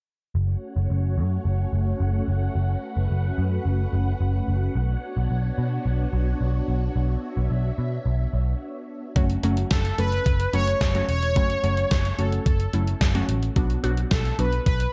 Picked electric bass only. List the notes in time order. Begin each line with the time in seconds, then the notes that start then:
0.35 F#1
0.76 F#1
0.90 F#1
1.18 F#2
1.45 F#1
1.73 F#1
2.00 F#1
2.28 F#1
2.55 F#1
2.97 F#1
3.10 F#1
3.38 F#2
3.65 F#1
3.93 F#1
4.20 F#1
4.48 F#1
4.75 B1
5.17 B1
5.31 B1
5.58 B2
5.86 B1
6.13 B1
6.41 B1
6.68 B1
6.96 B1
7.37 B1
7.51 B1
7.78 B2
8.06 B1
8.33 B1
9.16 F#1
9.43 F#1
9.71 F#1
9.98 F#1
10.26 F#1
10.53 F#1
10.81 F#1
11.09 E1
11.36 F#1
11.64 F#1
11.91 F#1
12.19 F#1
12.46 F#1
12.74 F#1
13.01 F#1
13.29 A1
13.56 B1
13.84 B1
14.11 B1
14.39 B1
14.66 B1